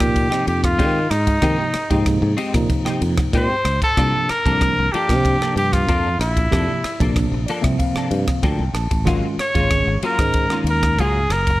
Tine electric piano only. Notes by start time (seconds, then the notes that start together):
0.02 C3 F3 A#3 D#4
1.43 C3 F3 A#3 D#4
1.92 C3 F3 A#3 D#4
2.54 C3 F3 A#3 D#4
3.99 C3 F3 A#3 D4
4.47 C3 F3 A#3 D4
5.10 C3 F3 A#3 D4
6.51 C3 F3 A#3 G4
7.00 C3 F3 A#3 D4
7.46 D5
7.62 C3 F3 A#3 C4 E5
7.79 F5
8.11 F5
8.43 G5
8.74 A5
9.05 D#3 G#3 C#4 F4
9.55 D#3 G#3 C#4 G#4
10.19 D#3 G#3 C#4 D#4